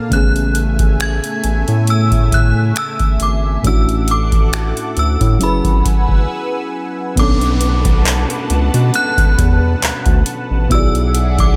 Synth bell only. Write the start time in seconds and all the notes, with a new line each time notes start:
Already playing: F6
0.13 F#6
1.02 G#6
1.90 E6
2.34 F#6
2.78 E6
3.23 D6
3.67 E6
4.11 D6
4.99 E6
5.43 B5
7.19 D6
8.95 F#6
10.72 E6
11.40 D6